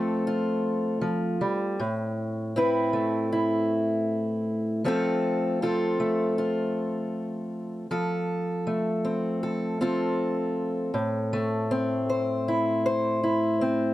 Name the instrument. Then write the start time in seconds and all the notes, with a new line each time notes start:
steel-string acoustic guitar
Already playing: F3 A3 C4 F4 A4
0.27 F4
1.01 F3
1.41 G3
1.80 A2
2.56 C4 E4 B4
2.93 A3
3.32 E4
4.84 F3 A3 C4 F4 A4
5.62 C4 F4 A4
6.00 A3
6.38 F4
7.91 F3 A4
8.67 A3
9.05 C4
9.43 A4
9.81 C4 F4 A4
10.94 A2
11.33 A3
11.71 C4
12.09 C5
12.48 E4
12.86 C5
13.23 E4
13.61 C4